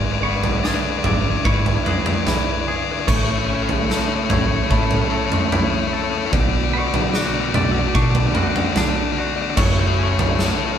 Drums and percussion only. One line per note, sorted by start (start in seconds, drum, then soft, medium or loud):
0.44 floor tom medium
0.64 snare medium
1.04 floor tom medium
1.04 mid tom medium
1.45 kick loud
1.66 floor tom medium
1.86 mid tom medium
2.06 mid tom medium
2.27 snare medium
2.27 floor tom medium
3.08 kick medium
3.08 floor tom medium
3.08 crash medium
3.69 floor tom medium
3.90 snare medium
4.30 floor tom medium
4.30 mid tom medium
4.71 kick loud
4.91 floor tom medium
5.32 mid tom medium
5.52 floor tom medium
5.52 mid tom medium
6.33 kick loud
6.33 floor tom medium
6.94 floor tom medium
7.14 snare medium
7.54 floor tom medium
7.54 mid tom medium
7.95 kick loud
8.15 floor tom medium
8.35 mid tom medium
8.56 mid tom medium
8.76 snare medium
8.76 floor tom medium
9.57 kick loud
9.57 floor tom medium
9.57 crash medium
10.19 floor tom medium
10.39 snare medium